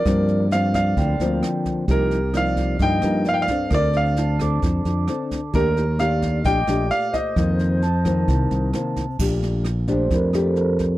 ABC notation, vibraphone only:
X:1
M:4/4
L:1/8
Q:1/4=131
K:Fmix
V:1 name="Vibraphone"
d z3 g4 | z8 | z2 a d'4 z | z4 d'4 |
z2 a4 z2 | [K:Bb] z3 c B A3 |]